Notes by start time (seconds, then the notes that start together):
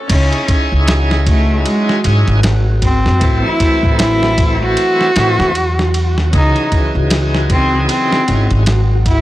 0.08 C#2 F#3 C#4 D#4 E4 F#4, kick, crash, ride
0.13 G#4
0.32 ride
0.48 kick, ride
0.72 C#2
0.88 snare, ride
1.11 snare
1.26 A3, kick, ride
1.66 G#3, ride
1.89 snare
2.04 G#1 C#4 D#4 E4 G#4, ride
2.28 G#1, ride
2.43 snare, ride
2.82 C4, kick, ride
3.06 F#2, snare
3.19 A1 E3 A3 C4, kick, ride
3.25 E4
3.46 E4
3.60 kick, ride
3.83 A1, kick
3.99 E4, snare, ride
4.23 snare
4.38 kick, ride
4.62 F#4
4.77 ride
5.01 snare
5.16 A2 E3 A3 C4 E4, snare, ride
5.39 E2, snare
5.55 ride
5.79 snare
5.94 ride
6.17 D#2, snare
6.31 C#2 C#3 E3 D#4, kick, ride
6.36 G#4
6.56 ride
6.72 kick, ride
6.95 C#2
7.10 snare, ride
7.34 snare
7.50 C4, kick, ride
7.89 C4, ride
8.12 snare
8.28 G#1 C#4 D#4 E4 G#4, ride
8.51 G#1, ride
8.66 snare, ride
9.06 E4, kick, ride